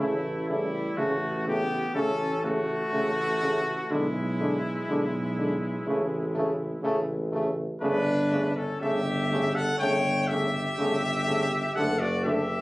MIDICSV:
0, 0, Header, 1, 6, 480
1, 0, Start_track
1, 0, Tempo, 980392
1, 1915, Time_signature, 4, 2, 24, 8
1, 6175, End_track
2, 0, Start_track
2, 0, Title_t, "Trumpet"
2, 0, Program_c, 0, 56
2, 0, Note_on_c, 0, 64, 89
2, 218, Note_off_c, 0, 64, 0
2, 236, Note_on_c, 0, 64, 93
2, 476, Note_on_c, 0, 66, 100
2, 483, Note_off_c, 0, 64, 0
2, 718, Note_off_c, 0, 66, 0
2, 722, Note_on_c, 0, 67, 106
2, 951, Note_off_c, 0, 67, 0
2, 954, Note_on_c, 0, 69, 109
2, 1188, Note_off_c, 0, 69, 0
2, 1196, Note_on_c, 0, 66, 116
2, 1915, Note_on_c, 0, 64, 98
2, 1923, Note_off_c, 0, 66, 0
2, 3585, Note_off_c, 0, 64, 0
2, 3825, Note_on_c, 0, 71, 119
2, 4195, Note_on_c, 0, 69, 101
2, 4203, Note_off_c, 0, 71, 0
2, 4314, Note_off_c, 0, 69, 0
2, 4317, Note_on_c, 0, 76, 121
2, 4677, Note_on_c, 0, 78, 127
2, 4685, Note_off_c, 0, 76, 0
2, 4791, Note_off_c, 0, 78, 0
2, 4794, Note_on_c, 0, 79, 127
2, 5031, Note_on_c, 0, 76, 127
2, 5038, Note_off_c, 0, 79, 0
2, 5751, Note_off_c, 0, 76, 0
2, 5754, Note_on_c, 0, 78, 118
2, 5874, Note_on_c, 0, 74, 114
2, 5881, Note_off_c, 0, 78, 0
2, 5990, Note_off_c, 0, 74, 0
2, 5993, Note_on_c, 0, 76, 127
2, 6175, Note_off_c, 0, 76, 0
2, 6175, End_track
3, 0, Start_track
3, 0, Title_t, "Flugelhorn"
3, 0, Program_c, 1, 56
3, 0, Note_on_c, 1, 57, 78
3, 241, Note_on_c, 1, 55, 85
3, 248, Note_off_c, 1, 57, 0
3, 481, Note_off_c, 1, 55, 0
3, 487, Note_on_c, 1, 57, 89
3, 718, Note_off_c, 1, 57, 0
3, 722, Note_on_c, 1, 59, 87
3, 954, Note_off_c, 1, 59, 0
3, 960, Note_on_c, 1, 61, 96
3, 1202, Note_on_c, 1, 57, 100
3, 1209, Note_off_c, 1, 61, 0
3, 1917, Note_off_c, 1, 57, 0
3, 1920, Note_on_c, 1, 56, 82
3, 3568, Note_off_c, 1, 56, 0
3, 3830, Note_on_c, 1, 62, 127
3, 4178, Note_off_c, 1, 62, 0
3, 4195, Note_on_c, 1, 61, 97
3, 4313, Note_on_c, 1, 67, 127
3, 4320, Note_off_c, 1, 61, 0
3, 4676, Note_on_c, 1, 69, 109
3, 4683, Note_off_c, 1, 67, 0
3, 4785, Note_off_c, 1, 69, 0
3, 4788, Note_on_c, 1, 73, 124
3, 5026, Note_off_c, 1, 73, 0
3, 5032, Note_on_c, 1, 67, 123
3, 5757, Note_on_c, 1, 69, 110
3, 5765, Note_off_c, 1, 67, 0
3, 5870, Note_off_c, 1, 69, 0
3, 5873, Note_on_c, 1, 66, 107
3, 5993, Note_on_c, 1, 67, 122
3, 6001, Note_off_c, 1, 66, 0
3, 6175, Note_off_c, 1, 67, 0
3, 6175, End_track
4, 0, Start_track
4, 0, Title_t, "French horn"
4, 0, Program_c, 2, 60
4, 0, Note_on_c, 2, 57, 62
4, 72, Note_off_c, 2, 57, 0
4, 237, Note_on_c, 2, 57, 68
4, 316, Note_off_c, 2, 57, 0
4, 479, Note_on_c, 2, 57, 69
4, 558, Note_off_c, 2, 57, 0
4, 724, Note_on_c, 2, 57, 62
4, 802, Note_off_c, 2, 57, 0
4, 956, Note_on_c, 2, 57, 74
4, 1035, Note_off_c, 2, 57, 0
4, 1192, Note_on_c, 2, 57, 70
4, 1271, Note_off_c, 2, 57, 0
4, 1436, Note_on_c, 2, 57, 80
4, 1514, Note_off_c, 2, 57, 0
4, 1673, Note_on_c, 2, 57, 76
4, 1751, Note_off_c, 2, 57, 0
4, 1916, Note_on_c, 2, 56, 75
4, 1995, Note_off_c, 2, 56, 0
4, 2155, Note_on_c, 2, 56, 75
4, 2234, Note_off_c, 2, 56, 0
4, 2392, Note_on_c, 2, 56, 84
4, 2471, Note_off_c, 2, 56, 0
4, 2631, Note_on_c, 2, 56, 76
4, 2709, Note_off_c, 2, 56, 0
4, 2872, Note_on_c, 2, 57, 80
4, 2950, Note_off_c, 2, 57, 0
4, 3106, Note_on_c, 2, 57, 84
4, 3184, Note_off_c, 2, 57, 0
4, 3347, Note_on_c, 2, 57, 96
4, 3425, Note_off_c, 2, 57, 0
4, 3582, Note_on_c, 2, 57, 84
4, 3661, Note_off_c, 2, 57, 0
4, 3821, Note_on_c, 2, 57, 81
4, 3899, Note_off_c, 2, 57, 0
4, 4068, Note_on_c, 2, 57, 83
4, 4146, Note_off_c, 2, 57, 0
4, 4318, Note_on_c, 2, 57, 81
4, 4397, Note_off_c, 2, 57, 0
4, 4557, Note_on_c, 2, 57, 76
4, 4636, Note_off_c, 2, 57, 0
4, 4800, Note_on_c, 2, 57, 91
4, 4879, Note_off_c, 2, 57, 0
4, 5038, Note_on_c, 2, 57, 77
4, 5117, Note_off_c, 2, 57, 0
4, 5279, Note_on_c, 2, 57, 99
4, 5357, Note_off_c, 2, 57, 0
4, 5521, Note_on_c, 2, 57, 80
4, 5599, Note_off_c, 2, 57, 0
4, 5762, Note_on_c, 2, 57, 84
4, 5841, Note_off_c, 2, 57, 0
4, 5996, Note_on_c, 2, 57, 87
4, 6075, Note_off_c, 2, 57, 0
4, 6175, End_track
5, 0, Start_track
5, 0, Title_t, "Trombone"
5, 0, Program_c, 3, 57
5, 0, Note_on_c, 3, 49, 74
5, 74, Note_off_c, 3, 49, 0
5, 238, Note_on_c, 3, 49, 59
5, 316, Note_off_c, 3, 49, 0
5, 479, Note_on_c, 3, 49, 73
5, 557, Note_off_c, 3, 49, 0
5, 715, Note_on_c, 3, 49, 65
5, 793, Note_off_c, 3, 49, 0
5, 953, Note_on_c, 3, 49, 74
5, 1031, Note_off_c, 3, 49, 0
5, 1198, Note_on_c, 3, 49, 66
5, 1277, Note_off_c, 3, 49, 0
5, 1431, Note_on_c, 3, 49, 79
5, 1509, Note_off_c, 3, 49, 0
5, 1672, Note_on_c, 3, 49, 69
5, 1750, Note_off_c, 3, 49, 0
5, 1912, Note_on_c, 3, 50, 86
5, 1991, Note_off_c, 3, 50, 0
5, 2156, Note_on_c, 3, 50, 78
5, 2234, Note_off_c, 3, 50, 0
5, 2394, Note_on_c, 3, 50, 86
5, 2472, Note_off_c, 3, 50, 0
5, 2632, Note_on_c, 3, 50, 73
5, 2710, Note_off_c, 3, 50, 0
5, 2871, Note_on_c, 3, 49, 87
5, 2949, Note_off_c, 3, 49, 0
5, 3113, Note_on_c, 3, 49, 81
5, 3192, Note_off_c, 3, 49, 0
5, 3341, Note_on_c, 3, 49, 84
5, 3420, Note_off_c, 3, 49, 0
5, 3584, Note_on_c, 3, 49, 80
5, 3662, Note_off_c, 3, 49, 0
5, 3826, Note_on_c, 3, 49, 90
5, 3905, Note_off_c, 3, 49, 0
5, 4072, Note_on_c, 3, 49, 80
5, 4150, Note_off_c, 3, 49, 0
5, 4315, Note_on_c, 3, 49, 89
5, 4393, Note_off_c, 3, 49, 0
5, 4560, Note_on_c, 3, 49, 88
5, 4639, Note_off_c, 3, 49, 0
5, 4798, Note_on_c, 3, 49, 88
5, 4876, Note_off_c, 3, 49, 0
5, 5040, Note_on_c, 3, 49, 82
5, 5118, Note_off_c, 3, 49, 0
5, 5279, Note_on_c, 3, 49, 85
5, 5357, Note_off_c, 3, 49, 0
5, 5518, Note_on_c, 3, 49, 74
5, 5596, Note_off_c, 3, 49, 0
5, 5759, Note_on_c, 3, 50, 88
5, 5837, Note_off_c, 3, 50, 0
5, 5999, Note_on_c, 3, 50, 78
5, 6078, Note_off_c, 3, 50, 0
5, 6175, End_track
6, 0, Start_track
6, 0, Title_t, "Tuba"
6, 0, Program_c, 4, 58
6, 0, Note_on_c, 4, 33, 86
6, 423, Note_off_c, 4, 33, 0
6, 480, Note_on_c, 4, 33, 85
6, 901, Note_off_c, 4, 33, 0
6, 957, Note_on_c, 4, 33, 88
6, 1378, Note_off_c, 4, 33, 0
6, 1435, Note_on_c, 4, 33, 80
6, 1858, Note_off_c, 4, 33, 0
6, 1920, Note_on_c, 4, 35, 96
6, 2342, Note_off_c, 4, 35, 0
6, 2398, Note_on_c, 4, 35, 99
6, 2816, Note_off_c, 4, 35, 0
6, 2871, Note_on_c, 4, 33, 103
6, 3291, Note_off_c, 4, 33, 0
6, 3343, Note_on_c, 4, 33, 99
6, 3766, Note_off_c, 4, 33, 0
6, 3824, Note_on_c, 4, 31, 111
6, 4260, Note_off_c, 4, 31, 0
6, 4317, Note_on_c, 4, 31, 105
6, 4740, Note_off_c, 4, 31, 0
6, 4798, Note_on_c, 4, 31, 114
6, 5219, Note_off_c, 4, 31, 0
6, 5274, Note_on_c, 4, 31, 100
6, 5699, Note_off_c, 4, 31, 0
6, 5752, Note_on_c, 4, 30, 106
6, 6175, Note_off_c, 4, 30, 0
6, 6175, End_track
0, 0, End_of_file